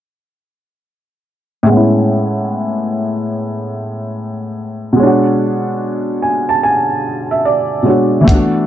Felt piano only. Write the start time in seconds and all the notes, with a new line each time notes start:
1.63 A2 G#3
1.70 B3 C#4
1.77 E4
4.93 B2 G#3
5.00 D4 C#5
5.06 F#4
6.22 G#5
6.49 A5
6.63 G#5
7.31 E5
7.45 D5
7.83 B2 G#3 C#5
7.88 D4 F#4
8.21 E3 A3
8.28 B3 D4
8.35 F#4